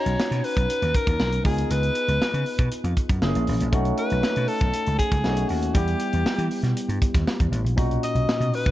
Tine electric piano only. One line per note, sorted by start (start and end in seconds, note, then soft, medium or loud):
0.00 1.41 C#4 medium
0.00 1.41 D#4 medium
0.00 1.42 F#4 medium
0.00 1.42 A#5 medium
1.43 3.18 B3 medium
1.43 3.18 D#4 medium
1.43 3.19 F4 medium
1.43 3.19 G#4 medium
3.22 3.73 A#3 medium
3.22 3.71 C#4 medium
3.22 3.73 E4 medium
3.22 3.73 G#4 medium
3.72 5.21 A3 medium
3.72 5.21 C#4 medium
3.72 5.22 D#4 medium
3.72 5.22 F#4 medium
5.25 5.75 A3 medium
5.25 5.75 C#4 medium
5.25 5.76 D#4 medium
5.25 5.76 F#4 medium
5.75 7.73 G3 medium
5.75 7.74 B3 medium
5.75 7.74 E4 medium
5.75 7.75 G4 medium
7.76 8.71 A#2 medium
7.76 8.71 C#4 medium
7.76 8.71 D#4 medium
7.76 8.71 F#4 medium